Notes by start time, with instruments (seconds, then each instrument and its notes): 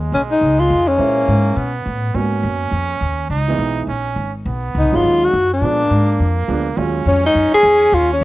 Already playing: upright bass D#2, trumpet G#3
0.12 upright bass B1, tenor saxophone C#4
0.31 tenor saxophone D#4
0.41 upright bass C#2
0.60 tenor saxophone F4
0.70 upright bass F2
0.88 tenor saxophone C#4
0.98 upright bass A#2, grand piano G#3 C#4 E4 C5, trumpet A#3
1.28 upright bass G#2
1.56 upright bass B2, trumpet B3
1.86 upright bass A2
2.14 upright bass G#2, grand piano A#3 B3 C#4 F#4, trumpet C#4
2.43 upright bass F#2
2.71 upright bass F2
3.01 upright bass D#2
3.30 upright bass C#2, trumpet D#4
3.48 grand piano E3 G#3 B3 D#4
3.59 upright bass B1
3.87 upright bass A#1, trumpet C#4
4.16 upright bass G#1
4.46 upright bass B1, trumpet B3
4.75 upright bass C#2, tenor saxophone D#4
4.85 upright bass B1
4.92 upright bass G#1, grand piano F#3 G#3 C#4 D#4, tenor saxophone F4
5.04 upright bass D#2
5.24 tenor saxophone F#4
5.33 upright bass F#2
5.53 tenor saxophone D4
5.61 upright bass A#2, grand piano F3 G#3 B3 D4, trumpet A#3
5.90 upright bass G#2
6.19 upright bass F2
6.47 upright bass D2, grand piano F3 G#3 B3 D4
6.76 upright bass D#2, grand piano F#3 G#3 C#4 F4, trumpet C#4
7.05 upright bass F2, tenor saxophone C#4
7.26 tenor saxophone D#4
7.34 upright bass F#2
7.53 tenor saxophone G#4, muted upright bass stroke
7.63 upright bass E2
7.92 upright bass D#2, tenor saxophone F4
8.13 tenor saxophone C#4
8.21 upright bass C#2